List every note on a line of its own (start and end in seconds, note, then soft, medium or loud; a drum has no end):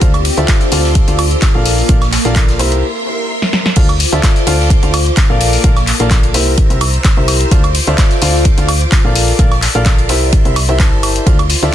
0.00 0.30 D2 loud
0.00 0.67 C4 medium
0.00 2.04 D4 medium
0.00 0.12 F4 medium
0.00 1.64 F4 medium
0.00 0.67 G4 medium
0.00 0.12 A4 medium
0.00 0.12 C5 medium
0.00 1.64 C5 medium
0.00 0.68 D5 medium
0.00 0.12 D5 medium
0.00 0.12 F5 loud
0.00 2.57 D6 medium
0.00 kick loud
0.00 closed hi-hat medium
0.00 ride medium
0.14 closed hi-hat soft
0.14 ride soft
0.14 high woodblock medium
0.25 open hi-hat loud
0.25 ride medium
0.37 0.44 D2 medium
0.37 0.69 F4 medium
0.37 0.69 A4 medium
0.37 0.69 C5 medium
0.37 0.69 D5 medium
0.37 0.69 E5 loud
0.37 closed hi-hat soft
0.48 1.66 E6 medium
0.48 kick loud
0.48 snare loud
0.48 clap loud
0.48 closed hi-hat medium
0.48 ride medium
0.61 snare soft
0.61 closed hi-hat soft
0.72 1.00 D2 medium
0.72 1.05 F4 medium
0.72 1.05 A4 medium
0.72 1.66 A4 medium
0.72 1.05 C5 medium
0.72 1.05 D5 medium
0.72 1.05 F5 loud
0.72 open hi-hat loud
0.72 ride medium
0.84 snare medium
0.95 kick loud
0.95 closed hi-hat medium
0.95 ride medium
1.08 1.36 D2 medium
1.08 1.17 F4 medium
1.08 1.17 A4 medium
1.08 1.17 C5 medium
1.08 1.17 D5 medium
1.08 1.17 F5 medium
1.08 closed hi-hat medium
1.08 ride soft
1.19 open hi-hat loud
1.19 ride medium
1.19 high woodblock medium
1.31 closed hi-hat soft
1.42 kick loud
1.42 snare loud
1.42 clap loud
1.42 closed hi-hat medium
1.42 ride medium
1.55 1.83 A#1 medium
1.55 1.86 F4 loud
1.55 1.86 A4 medium
1.55 1.86 A#4 medium
1.55 1.86 D5 medium
1.55 1.86 F5 loud
1.66 2.83 A#3 medium
1.66 2.58 A#3 medium
1.66 2.58 A5 medium
1.66 open hi-hat loud
1.66 ride medium
1.78 open hi-hat medium
1.89 2.18 A#1 loud
1.89 2.00 F4 medium
1.89 2.00 A4 medium
1.89 2.00 A#4 medium
1.89 2.00 D5 medium
1.89 2.00 F5 loud
1.89 kick loud
1.89 closed hi-hat medium
1.89 ride medium
2.01 snare soft
2.01 closed hi-hat soft
2.01 high woodblock medium
2.08 2.83 C6 medium
2.12 snare loud
2.12 clap soft
2.12 open hi-hat loud
2.12 ride medium
2.25 2.61 A#1 medium
2.25 2.57 F4 loud
2.25 2.57 A4 medium
2.25 2.57 A#4 medium
2.25 2.57 D5 medium
2.25 2.57 F5 loud
2.25 snare soft
2.25 closed hi-hat soft
2.36 kick loud
2.36 clap loud
2.36 closed hi-hat medium
2.36 ride medium
2.49 snare soft
2.49 closed hi-hat soft
2.59 2.83 C2 medium
2.59 2.83 E4 loud
2.59 2.83 G4 medium
2.59 3.75 A#4 medium
2.59 2.83 A#4 medium
2.59 2.83 C5 medium
2.59 3.75 E5 medium
2.59 2.83 E5 loud
2.59 3.75 C6 medium
2.59 open hi-hat loud
2.59 ride medium
2.72 closed hi-hat soft
2.72 ride soft
3.42 snare medium
3.53 snare medium
3.66 snare medium
3.76 4.05 D2 loud
3.76 3.87 F4 medium
3.76 5.39 F4 medium
3.76 3.87 A4 medium
3.76 3.87 C5 medium
3.76 5.39 C5 medium
3.76 3.87 D5 medium
3.76 3.87 F5 loud
3.76 6.32 D6 medium
3.76 kick loud
3.76 closed hi-hat medium
3.76 ride medium
3.76 crash loud
3.89 closed hi-hat soft
3.89 ride soft
3.89 high woodblock medium
4.00 open hi-hat loud
4.00 ride medium
4.12 4.19 D2 medium
4.12 4.44 F4 loud
4.12 4.44 A4 medium
4.12 4.44 C5 medium
4.12 4.44 D5 medium
4.12 4.44 E5 loud
4.12 closed hi-hat soft
4.23 kick loud
4.23 snare loud
4.23 clap loud
4.23 closed hi-hat medium
4.23 ride medium
4.36 snare soft
4.36 closed hi-hat soft
4.47 4.75 D2 medium
4.47 4.80 F4 medium
4.47 4.80 A4 medium
4.47 4.80 C5 medium
4.47 4.80 D5 medium
4.47 4.80 F5 loud
4.47 open hi-hat loud
4.47 ride medium
4.60 snare medium
4.70 kick loud
4.70 closed hi-hat medium
4.70 ride medium
4.83 5.11 D2 medium
4.83 4.92 F4 medium
4.83 4.92 A4 medium
4.83 4.92 C5 medium
4.83 4.92 D5 medium
4.83 4.92 F5 medium
4.83 closed hi-hat medium
4.83 ride soft
4.94 open hi-hat loud
4.94 ride medium
4.94 high woodblock medium
5.06 closed hi-hat soft
5.17 kick loud
5.17 snare loud
5.17 clap loud
5.17 closed hi-hat medium
5.17 ride medium
5.30 5.58 A#1 medium
5.30 5.61 F4 medium
5.30 5.61 A4 medium
5.30 5.61 A#4 medium
5.30 5.61 D5 medium
5.30 5.61 F5 loud
5.40 6.33 A#3 medium
5.40 6.33 A5 medium
5.40 open hi-hat loud
5.40 ride medium
5.53 open hi-hat medium
5.64 5.92 A#1 loud
5.64 5.75 F4 medium
5.64 5.75 A4 medium
5.64 5.75 A#4 medium
5.64 5.75 D5 medium
5.64 5.75 F5 loud
5.64 kick loud
5.64 closed hi-hat medium
5.64 ride medium
5.76 snare soft
5.76 closed hi-hat soft
5.76 high woodblock medium
5.87 clap medium
5.87 open hi-hat loud
5.87 ride medium
6.00 6.36 A#1 medium
6.00 6.32 F4 loud
6.00 6.32 A4 medium
6.00 6.32 A#4 medium
6.00 6.32 D5 medium
6.00 6.32 F5 loud
6.00 closed hi-hat soft
6.11 kick loud
6.11 snare loud
6.11 clap loud
6.11 closed hi-hat medium
6.11 ride medium
6.23 closed hi-hat soft
6.23 ride soft
6.34 6.63 C2 medium
6.34 6.67 E4 medium
6.34 6.67 G4 medium
6.34 6.67 A#4 medium
6.34 9.13 C5 medium
6.34 6.67 C5 medium
6.34 6.67 E5 loud
6.34 7.50 A#5 medium
6.34 7.50 E6 medium
6.34 open hi-hat loud
6.34 ride medium
6.58 kick loud
6.58 closed hi-hat medium
6.58 ride medium
6.70 6.98 C2 loud
6.70 6.79 E4 medium
6.70 6.79 G4 medium
6.70 6.79 A#4 medium
6.70 6.79 C5 medium
6.70 6.79 E5 medium
6.70 closed hi-hat medium
6.81 open hi-hat loud
6.81 ride medium
6.81 high woodblock medium
6.94 closed hi-hat soft
7.04 kick loud
7.04 snare loud
7.04 clap loud
7.04 closed hi-hat medium
7.04 ride medium
7.17 7.45 C2 medium
7.17 7.49 E4 medium
7.17 7.49 G4 medium
7.17 7.49 A#4 medium
7.17 7.49 C5 medium
7.17 7.49 E5 loud
7.28 open hi-hat loud
7.28 ride medium
7.28 high woodblock medium
7.41 closed hi-hat medium
7.51 7.80 D2 loud
7.51 7.62 F4 loud
7.51 9.14 F4 medium
7.51 7.62 A4 medium
7.51 7.62 C5 medium
7.51 7.62 D5 medium
7.51 7.62 F5 loud
7.51 10.07 D6 medium
7.51 kick loud
7.51 closed hi-hat medium
7.51 ride medium
7.64 closed hi-hat soft
7.64 ride soft
7.64 high woodblock medium
7.75 open hi-hat loud
7.75 ride medium
7.87 7.94 D2 medium
7.87 8.19 F4 loud
7.87 8.19 A4 medium
7.87 8.19 C5 medium
7.87 8.19 D5 medium
7.87 8.19 E5 loud
7.87 closed hi-hat soft
7.98 kick loud
7.98 snare loud
7.98 clap loud
7.98 closed hi-hat medium
7.98 ride medium
8.11 snare soft
8.11 closed hi-hat soft
8.22 8.50 D2 medium
8.22 8.55 F4 medium
8.22 8.55 A4 medium
8.22 8.55 C5 medium
8.22 8.55 D5 medium
8.22 8.55 F5 loud
8.22 open hi-hat loud
8.22 ride medium
8.34 snare medium
8.45 kick loud
8.45 closed hi-hat medium
8.45 ride loud
8.57 8.86 D2 medium
8.57 8.67 F4 medium
8.57 8.67 A4 medium
8.57 8.67 C5 medium
8.57 8.67 D5 medium
8.57 8.67 F5 medium
8.57 closed hi-hat medium
8.57 ride soft
8.69 open hi-hat loud
8.69 ride medium
8.69 high woodblock medium
8.81 closed hi-hat soft
8.92 kick loud
8.92 snare loud
8.92 clap loud
8.92 closed hi-hat medium
8.92 ride medium
9.05 9.32 A#1 medium
9.05 9.36 F4 medium
9.05 9.36 A4 medium
9.05 9.36 A#4 medium
9.05 9.36 D5 medium
9.05 9.36 F5 loud
9.15 11.24 D5 medium
9.15 10.08 A5 medium
9.15 open hi-hat loud
9.15 ride medium
9.28 open hi-hat medium
9.39 9.67 A#1 loud
9.39 9.50 F4 medium
9.39 9.50 A4 medium
9.39 9.50 A#4 medium
9.39 9.50 D5 medium
9.39 9.50 F5 loud
9.39 kick loud
9.39 closed hi-hat medium
9.39 ride medium
9.52 snare soft
9.52 closed hi-hat soft
9.52 high woodblock medium
9.62 clap medium
9.62 open hi-hat loud
9.62 ride medium
9.75 10.11 A#1 medium
9.75 10.07 F4 loud
9.75 10.07 A4 medium
9.75 10.07 A#4 medium
9.75 10.07 D5 medium
9.75 10.07 F5 loud
9.75 closed hi-hat soft
9.86 kick loud
9.86 snare loud
9.86 clap loud
9.86 closed hi-hat medium
9.86 ride medium
9.98 closed hi-hat soft
9.98 ride soft
10.09 10.38 C2 medium
10.09 10.42 E4 medium
10.09 10.42 G4 medium
10.09 10.42 A#4 medium
10.09 10.42 C5 medium
10.09 11.25 E5 medium
10.09 10.42 E5 loud
10.09 11.25 C6 medium
10.09 open hi-hat loud
10.09 ride medium
10.32 kick loud
10.32 closed hi-hat medium
10.32 ride medium
10.45 10.94 C2 loud
10.45 10.55 E4 medium
10.45 10.55 G4 medium
10.45 10.55 A#4 medium
10.45 10.55 C5 medium
10.45 10.55 E5 medium
10.45 closed hi-hat medium
10.56 open hi-hat loud
10.56 ride medium
10.56 high woodblock medium
10.69 10.78 E4 loud
10.69 10.78 G4 medium
10.69 10.78 A#4 medium
10.69 10.78 C5 medium
10.69 10.78 E5 loud
10.69 closed hi-hat soft
10.80 11.24 E4 medium
10.80 11.24 G4 medium
10.80 11.24 A#4 medium
10.80 11.24 C5 medium
10.80 11.24 A5 loud
10.80 kick loud
10.80 snare loud
10.80 clap loud
10.80 closed hi-hat medium
10.80 ride medium
10.92 11.20 G1 medium
11.03 open hi-hat loud
11.03 ride medium
11.03 high woodblock medium
11.16 closed hi-hat medium
11.26 11.55 D2 loud
11.26 11.75 F4 medium
11.26 11.37 F4 medium
11.26 11.37 A4 medium
11.26 11.37 C5 medium
11.26 11.75 C5 medium
11.26 11.37 D5 medium
11.26 11.37 F5 loud
11.26 11.75 D6 medium
11.26 kick loud
11.26 closed hi-hat medium
11.26 ride medium
11.39 closed hi-hat soft
11.39 ride soft
11.39 high woodblock medium
11.49 open hi-hat loud
11.49 ride medium
11.62 11.69 D2 medium
11.62 11.75 F4 loud
11.62 11.75 A4 medium
11.62 11.75 C5 medium
11.62 11.75 D5 medium
11.62 11.75 E5 loud
11.62 closed hi-hat soft